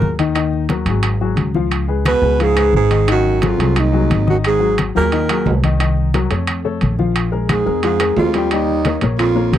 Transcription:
Already playing: baritone saxophone A#2, upright piano F#3 F#4 G#4, alto saxophone A#4
0.02 upright bass D#2, high conga
0.19 upright piano D#3 D#4 D#5, high conga, high timbale
0.35 upright piano D#3 D#4 D#5, high conga, high timbale, claves
0.53 high conga
0.69 upright piano F#3 F#4 A#4, high conga, high timbale
0.86 upright bass G#1, upright piano F#3 F#4 G#4, high conga, high timbale
1.03 high conga, high timbale, claves
1.21 upright piano F#3 F#4 G#4, high conga
1.36 upright bass C#2, high conga, high timbale
1.54 upright piano F3 F4 F5, high conga
1.71 high conga, high timbale, claves
1.88 upright piano G#3 G#4 B4, high conga
2.05 baritone saxophone B2, alto saxophone B4, high conga, high timbale, claves
2.22 upright bass C#2, upright piano G#3 G#4 B4
2.39 baritone saxophone G#2, upright piano F3 F4 F5, alto saxophone G#4, high conga, high timbale
2.56 upright piano G#3 G#4 B4, high conga, high timbale, claves
2.73 upright bass G#1, baritone saxophone G#2, alto saxophone G#4, high conga
2.91 upright piano D#3 D#4 D#5, high timbale
3.08 baritone saxophone F#2, upright piano D#3 D#4 D#5, high conga, high timbale, claves
3.12 alto saxophone F#4
3.27 high conga
3.42 baritone saxophone F2, upright piano F#3 F#4 G#4, high conga, high timbale
3.47 alto saxophone F4
3.59 upright bass C2, upright piano F#3 F#4 G#4, high conga, high timbale
3.76 baritone saxophone D#2, alto saxophone D#4, high conga, high timbale, claves
3.92 upright piano F#3 F#4 G#4, high conga
4.10 upright bass G#1, high conga, high timbale
4.27 baritone saxophone F#2, upright piano D#3 D#4 D#5, alto saxophone F#4, high conga
4.44 baritone saxophone G#2, alto saxophone G#4, high conga, high timbale, claves
4.60 upright piano F#3 F#4 G#4, high conga
4.78 high conga, high timbale, claves
4.95 upright bass D#2, baritone saxophone A#2, upright piano F#3 F#4 G#4, alto saxophone A#4
5.12 upright piano D#3 D#4 D#5, high conga, high timbale
5.29 upright piano F#3 F#4 G#4, high conga, high timbale, claves
5.46 upright bass C2, high conga, low timbale
5.64 upright piano D#3 D#4 D#5, high conga, high timbale
5.80 upright piano D#3 D#4 D#5, high conga, high timbale, claves
5.97 high conga
6.14 upright piano F#3 F#4 A#4, high conga, high timbale
6.31 upright bass F2, upright piano A3 A4 C#5, high conga, high timbale
6.47 high conga, high timbale, claves
6.64 upright piano A3 A4 C#5, high conga
6.81 upright bass A#1, high conga, high timbale
6.99 upright piano F3 F4 F5, high conga
7.16 high conga, high timbale, claves
7.32 upright piano G#3 G#4 A#4, high conga
7.49 baritone saxophone G#2, alto saxophone G#4, high conga, high timbale, claves
7.66 upright bass F2, upright piano G#3 G#4 A#4
7.83 baritone saxophone G#2, upright piano F3 F4 F5, alto saxophone G#4, high conga, high timbale
7.99 upright piano G#3 G#4 A#4, high conga, high timbale, claves
8.17 upright bass D#2, baritone saxophone F2, alto saxophone F4, high conga, low timbale
8.34 upright piano G3 G4 G5, high timbale
8.51 baritone saxophone D#2, upright piano G3 G4 G5, alto saxophone D#4, high conga, high timbale, claves
8.69 high conga
8.85 upright piano A#3 A#4 C#5, high conga, high timbale
9.01 upright bass A#1, upright piano A#3 A#4 C#5, high conga, high timbale
9.18 baritone saxophone F2, alto saxophone F4, high conga, high timbale, claves
9.35 upright piano A#3 A#4 C#5, high conga
9.52 upright bass G#1, baritone saxophone G2, alto saxophone G4, high conga, high timbale

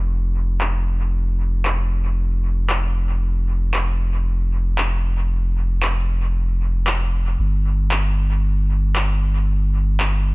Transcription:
Already playing: sub bass F1
0.61 clap
1.65 clap
2.69 clap
3.74 clap
4.78 clap
5.82 clap
6.87 clap
7.39 sub bass G1
7.91 clap
8.96 clap
10.00 clap

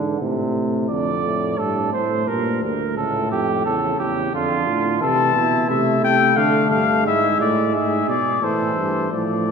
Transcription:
Already playing: tuba G#2, trombone D3
0.20 tuba A2, trombone C3
0.89 tuba F2, trombone D3, flugelhorn D5
1.25 trombone A2
1.58 tuba G2, trombone A2, flugelhorn A4
1.93 tuba A2, flugelhorn C5
2.27 trombone G2, tuba A#2, flugelhorn A#4
2.62 tuba D2, flugelhorn A#4
2.96 tuba C#2, trombone A2, flugelhorn A4
3.31 tuba F2, flugelhorn G4
3.65 tuba E2, trombone C#3, flugelhorn A4
4.00 tuba E2, flugelhorn G4
4.33 tuba F2, trombone D3, flugelhorn F4
4.68 tuba A2
5.01 tuba C3, trombone E3, flugelhorn A4, trumpet A5
5.36 tuba B2, flugelhorn E4
5.68 tuba C3, trombone A3, flugelhorn E4, trumpet E5
6.03 tuba C3, trumpet G5
6.36 tuba D3, trombone A3, flugelhorn D4, trumpet F5
6.70 tuba G2, trumpet F5
7.05 tuba G#2, trombone G#3, flugelhorn E4, trumpet E5
7.39 tuba A2, trumpet D5
7.72 tuba G#2, flugelhorn G#4, trumpet E5
8.08 tuba B2, trumpet D5
8.41 tuba A2, trombone E3, flugelhorn A4, trumpet C5
8.77 tuba G2
9.11 tuba A2, trombone F3, trumpet D5
9.47 trombone F3

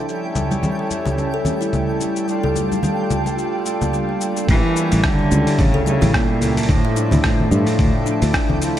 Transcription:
Already playing: analog synth pad E4 A4, synth texture G5
0.06 harmonium G3 C#4 E4, analog synth pad G3, shaker
0.10 harmonium A4
0.35 high conga, low conga, shaker
0.51 kalimba G3, high conga, shaker
0.63 low conga, shaker
0.70 analog synth pad C#4
0.79 kalimba G3
0.91 muted conga, high conga, shaker
1.05 muted conga, low conga, shaker
1.18 muted conga, shaker
1.34 kalimba A4
1.45 kalimba A3, low conga, shaker
1.61 kalimba E4, shaker
1.73 low conga, shaker
2.00 muted conga, shaker
2.16 shaker
2.27 harmonium G3 D4 F4, kalimba G3, shaker
2.31 harmonium A4
2.43 kalimba A4, low conga
2.56 kalimba A3, high conga, shaker
2.72 high conga, shaker
2.78 analog synth pad F4
2.83 kalimba G3, low conga, shaker
2.89 analog synth pad D4
3.11 kalimba F4, muted conga, high conga, low conga, shaker
3.26 muted conga, shaker
3.38 shaker
3.66 kalimba A3, shaker
3.81 kalimba A#3, high conga, low conga, shaker
3.93 kalimba G3, shaker
4.09 kalimba G3
4.21 shaker
4.36 kalimba G4, shaker
4.47 fretless electric bass A1, cello E3, harmonium G3 A#3 C#4 E4, synth texture G5, kick, open hi-hat, shaker
4.51 harmonium A4
4.75 analog synth pad C#4, shaker
4.92 fretless electric bass A1, kalimba G3, open hi-hat, shaker
4.97 cello E3
5.04 cello D3, kick, cross-stick, open hi-hat, low conga, shaker
5.11 analog synth pad E4
5.19 kalimba G3
5.29 fretless electric bass C#2, harmonium G3 C#4 E4, muted conga, shaker
5.33 harmonium A4
5.47 open hi-hat, muted conga, shaker
5.58 fretless electric bass A1, cello C#3, kick, open hi-hat, muted conga, shaker
5.74 kalimba A4, low conga
5.86 cello C#3, kalimba A3, high conga, shaker
6.01 fretless electric bass A1, kalimba E4, open hi-hat, low conga, shaker
6.14 cello A#2, kick, cross-stick, open hi-hat, shaker
6.40 harmonium G3 A#3 C#4 E4 A4, open hi-hat, muted conga, low conga, shaker
6.57 open hi-hat, high conga, shaker
6.63 harmonium F3, open hi-hat
6.68 fretless electric bass D2, cello A2, analog synth pad F3, harmonium A3 D4 E4 A4, kalimba A3, kick, open hi-hat, shaker
6.85 kalimba E5
6.93 analog synth pad A3, kalimba D4, shaker
7.11 fretless electric bass D2, open hi-hat, low conga, shaker
7.24 cello A2, kalimba A3, analog synth pad D4, kick, cross-stick, open hi-hat, shaker
7.40 low conga
7.50 fretless electric bass G2, harmonium F3 A3 D4 E4 A4, kalimba A4, muted conga, shaker
7.66 open hi-hat, muted conga, shaker
7.79 fretless electric bass D2, kick, open hi-hat, low conga, shaker
8.06 kalimba D4, shaker
8.22 fretless electric bass D2, kalimba E4, open hi-hat, shaker
8.34 kalimba A3, kick, cross-stick, open hi-hat, shaker
8.50 kalimba A3, low conga
8.61 harmonium F3 A3 D4 E4 A4, open hi-hat, shaker

